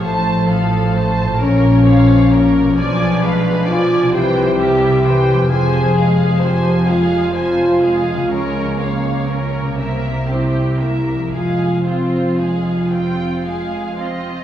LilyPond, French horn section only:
\new Staff \with { instrumentName = "French horn section" } { \time 6/8 \key f \minor \tempo 4. = 43 a'4. des'4. | d'4 f'8 g'4. | aes'4 g'8 f'4. | aes4 bes8 c'8 e'4 |
f'2~ f'8 r8 | }